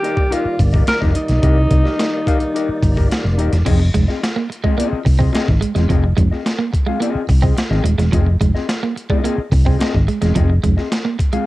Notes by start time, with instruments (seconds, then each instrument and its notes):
Already playing: tonewheel organ D#3 G3 A#3 D5, alto saxophone G4
0.03 clean electric guitar D#4 G4 A#4 D#5, closed hi-hat
0.17 muted clean electric guitar stroke, kick
0.30 clean electric guitar D#4 G4 A#4 D#5, alto saxophone F4, closed hi-hat
0.45 muted fingered electric bass stroke
0.59 fingered electric bass G1, muted clean electric guitar stroke, kick, open hi-hat
0.73 clean electric guitar D#4 G4 A#4 D#5, kick
0.87 alto saxophone A#4, muted clean electric guitar stroke, muted fingered electric bass stroke, snare, closed hi-hat
1.00 fingered electric bass F1, clean electric guitar D#4 G4 A#4 D#5, kick, snare
1.13 alto saxophone D#4, muted clean electric guitar stroke, closed hi-hat
1.28 fingered electric bass B1, muted clean electric guitar stroke, snare, closed hi-hat
1.42 fingered electric bass C2, clean electric guitar D#4 G4 A#4 D#5, kick, closed hi-hat
1.70 fingered electric bass C2, muted clean electric guitar stroke, kick, closed hi-hat
1.84 clean electric guitar D#4 G4 A#4 D#5, snare
1.99 muted clean electric guitar stroke, snare, closed hi-hat
2.12 muted clean electric guitar stroke
2.26 clean electric guitar D#4 G4 A#4 F5, kick, closed hi-hat
2.40 muted clean electric guitar stroke, closed hi-hat
2.54 clean electric guitar D#4 G4 A#4 D#5, closed hi-hat
2.69 muted fingered electric bass stroke
2.82 fingered electric bass G1, muted clean electric guitar stroke, kick, open hi-hat
2.96 clean electric guitar D#4 G4 A#4 D#5, kick
3.10 muted clean electric guitar stroke, snare, closed hi-hat
3.24 fingered electric bass F1, muted clean electric guitar stroke, snare
3.38 fingered electric bass D#1, clean electric guitar D#4 G4 A#4 D#5, closed hi-hat
3.52 fingered electric bass E1, muted clean electric guitar stroke, snare, closed hi-hat
3.65 fingered electric bass F1, clean electric guitar F3 C4 F4 G#4 D#5, kick, closed hi-hat, crash
3.80 muted clean electric guitar stroke
3.94 fingered electric bass F1, clean electric guitar G#3, muted clean electric guitar stroke, kick, closed hi-hat
4.08 clean electric guitar C4 F4 G#4 D#5, snare
4.22 muted clean electric guitar stroke, snare, closed hi-hat
4.36 clean electric guitar A#3, muted clean electric guitar stroke
4.50 muted clean electric guitar stroke, closed hi-hat
4.64 clean electric guitar G#3 C4 F4 G#4 D#5, kick
4.77 clean electric guitar A#3 C4 F4 G#4 D#5, closed hi-hat
4.93 muted fingered electric bass stroke
5.05 fingered electric bass C2, muted clean electric guitar stroke, kick, open hi-hat
5.19 clean electric guitar C4 F4 G#4 D#5, kick
5.33 clean electric guitar C4 F4 G#4 D#5, muted clean electric guitar stroke, muted fingered electric bass stroke, snare, closed hi-hat
5.48 fingered electric bass G#1, kick, snare
5.61 clean electric guitar G#3, muted clean electric guitar stroke, closed hi-hat
5.75 fingered electric bass E1, clean electric guitar G#3 C4 F4 G#4 D#5, snare, closed hi-hat
5.89 fingered electric bass F1, clean electric guitar F3 C4 F4 G#4 D#5, kick, closed hi-hat
6.04 muted clean electric guitar stroke
6.17 fingered electric bass F1, clean electric guitar G#3, muted clean electric guitar stroke, kick, closed hi-hat
6.31 clean electric guitar C4 F4 G#4 D#5, snare
6.46 muted clean electric guitar stroke, snare, closed hi-hat
6.58 clean electric guitar A#3, muted clean electric guitar stroke
6.73 muted clean electric guitar stroke, kick, closed hi-hat
6.86 clean electric guitar G#3 C4 F4 G#4 F5
7.00 clean electric guitar A#3 C4 F4 G#4 D#5, closed hi-hat
7.15 muted fingered electric bass stroke
7.29 fingered electric bass C2, muted clean electric guitar stroke, kick, open hi-hat
7.42 clean electric guitar C4 F4 G#4 D#5, kick
7.57 muted clean electric guitar stroke, snare, closed hi-hat
7.70 fingered electric bass G#1, clean electric guitar C4 F4 G#4 D#5, snare
7.84 fingered electric bass D#1, clean electric guitar G#3, muted clean electric guitar stroke, closed hi-hat
7.98 fingered electric bass E1, clean electric guitar G#3, muted clean electric guitar stroke, snare, closed hi-hat
8.12 fingered electric bass F1, clean electric guitar F3 C4 F4 G#4 D#5, kick, closed hi-hat
8.26 muted clean electric guitar stroke
8.41 fingered electric bass F1, clean electric guitar G#3, muted clean electric guitar stroke, kick, closed hi-hat
8.55 clean electric guitar C4 F4 G#4 D#5, snare
8.69 muted clean electric guitar stroke, snare, closed hi-hat
8.83 clean electric guitar A#3, muted clean electric guitar stroke
8.96 muted clean electric guitar stroke, closed hi-hat
9.10 clean electric guitar G#3 C4 F4 G#4 D#5, kick
9.23 clean electric guitar A#3 C4 F4 G#4 D#5, closed hi-hat
9.38 muted fingered electric bass stroke
9.52 fingered electric bass C2, muted clean electric guitar stroke, kick, open hi-hat
9.65 clean electric guitar C4 F4 G#4 D#5, kick
9.79 clean electric guitar C4 F4 G#4 D#5, muted clean electric guitar stroke, muted fingered electric bass stroke, snare, closed hi-hat
9.94 fingered electric bass G#1, kick, snare
10.07 clean electric guitar G#3, muted clean electric guitar stroke, closed hi-hat
10.21 fingered electric bass E1, clean electric guitar G#3 C4 F4 G#4 D#5, snare, closed hi-hat
10.35 fingered electric bass F1, clean electric guitar F3 C4 F4 G#4 D#5, kick, closed hi-hat
10.50 muted clean electric guitar stroke
10.63 fingered electric bass F1, clean electric guitar G#3, muted clean electric guitar stroke, kick, closed hi-hat
10.77 clean electric guitar C4 F4 G#4 D#5, snare
10.91 muted clean electric guitar stroke, snare, closed hi-hat
11.05 clean electric guitar A#3, muted clean electric guitar stroke
11.19 muted clean electric guitar stroke, kick, closed hi-hat
11.33 clean electric guitar G#3 C4 F4 G#4 F5, closed hi-hat